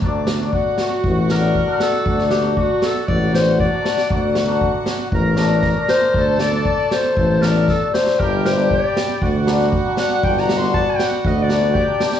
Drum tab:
SD |--o---o---o---o-|-oo---o---o---oo|--o---o---o-o-o-|--o---o---o-o-oo|
BD |o---o---o---o---|o---o---o---o---|o---o---o---o---|o---o---o---o---|

SD |--o---o---oo--o-|-ooo--o---o---oo|
BD |o---o---o---o---|o---o---o---o---|